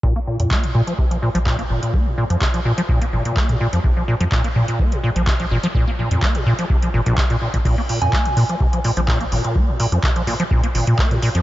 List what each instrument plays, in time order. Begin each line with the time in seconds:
0.03 sub bass A#1, acid bass A#2, kick
0.16 acid bass A#3
0.27 acid bass A#2
0.40 sub bass F2, acid bass A#2, closed hi-hat
0.51 acid bass A#3, kick, clap
0.63 acid bass A#2, closed hi-hat
0.75 acid bass A#2, sub bass A#2
0.87 acid bass F3, closed hi-hat
0.98 acid bass C3, kick
1.11 acid bass F3, closed hi-hat
1.22 acid bass A#2
1.35 sub bass A#1, acid bass F3, closed hi-hat
1.46 acid bass A#2, kick, clap
1.59 acid bass A#3, closed hi-hat
1.70 sub bass G#1, acid bass A#2
1.82 acid bass A#2, closed hi-hat
1.94 acid bass A#3, kick
2.06 acid bass A#2
2.18 acid bass A#2
2.30 sub bass F2, acid bass F3, closed hi-hat
2.41 acid bass C3, kick, clap
2.54 acid bass F3, closed hi-hat
2.65 acid bass A#2, sub bass A#2
2.78 acid bass F3, closed hi-hat
2.89 acid bass A#2, kick
3.02 acid bass A#3, closed hi-hat
3.13 sub bass G#1, acid bass A#2
3.25 acid bass A#2, sub bass A#2, closed hi-hat
3.37 acid bass A#3, kick, clap
3.49 acid bass A#2, sub bass A#2, closed hi-hat
3.61 acid bass A#2
3.73 sub bass F2, acid bass F3, closed hi-hat
3.84 sub bass A#1, acid bass C3, kick
3.97 acid bass F3
4.08 acid bass A#2
4.20 sub bass F2, acid bass F3, closed hi-hat
4.32 acid bass A#2, kick, clap
4.44 acid bass A#3, closed hi-hat
4.56 acid bass A#2, sub bass A#2
4.68 acid bass A#2, closed hi-hat
4.80 acid bass A#3, kick
4.92 acid bass A#2, closed hi-hat
5.04 acid bass A#2
5.16 sub bass A#1, acid bass F3, closed hi-hat
5.27 acid bass C3, kick, clap
5.40 acid bass F3, closed hi-hat
5.51 sub bass G#1, acid bass A#2
5.63 acid bass F3, closed hi-hat
5.75 acid bass A#2, kick
5.87 acid bass A#3
5.99 acid bass A#2
6.11 sub bass F2, acid bass A#2, closed hi-hat
6.22 acid bass A#3, kick, clap
6.35 acid bass A#2, closed hi-hat
6.46 sub bass A#2, acid bass A#2
6.59 acid bass F3, closed hi-hat
6.70 acid bass C3, kick
6.82 acid bass F3, closed hi-hat
6.94 sub bass G#1, acid bass A#2
7.06 acid bass A#1, sub bass A#2, closed hi-hat
7.18 acid bass C3, kick, clap
7.30 acid bass A#2, closed hi-hat
7.42 acid bass A#2
7.54 sub bass A#1, acid bass A#2, kick, closed hi-hat
7.65 sub bass A#1, acid bass A#2, kick, crash
7.78 acid bass A#3
7.89 acid bass A#2, open hi-hat
8.02 sub bass F2, acid bass A#2, synth bell G#5, closed hi-hat
8.13 acid bass A#3, kick, clap
8.26 acid bass A#2, closed hi-hat
8.37 sub bass A#2, acid bass A#2, open hi-hat
8.49 acid bass F3, closed hi-hat
8.61 acid bass C3, kick
8.73 acid bass F3, closed hi-hat
8.84 acid bass A#2, open hi-hat
8.97 sub bass A#1, acid bass F3, closed hi-hat
9.08 acid bass A#2, kick, clap
9.21 acid bass A#3, closed hi-hat
9.32 sub bass G#1, acid bass A#2, open hi-hat
9.44 acid bass A#2, closed hi-hat
9.56 acid bass A#3, kick
9.68 acid bass A#2
9.80 acid bass A#2, open hi-hat
9.92 sub bass F2, acid bass F3, closed hi-hat
10.03 acid bass C3, kick, clap
10.16 acid bass F3, closed hi-hat
10.27 sub bass A#2, acid bass A#2, open hi-hat
10.40 acid bass F3, closed hi-hat
10.51 acid bass A#2, kick
10.64 acid bass A#3, closed hi-hat
10.75 sub bass G#1, acid bass A#2, open hi-hat
10.87 acid bass A#2, sub bass A#2, closed hi-hat
10.99 acid bass A#3, kick, clap
11.11 acid bass A#2, sub bass A#2, closed hi-hat
11.22 acid bass A#2, open hi-hat
11.35 sub bass F2, acid bass F3, closed hi-hat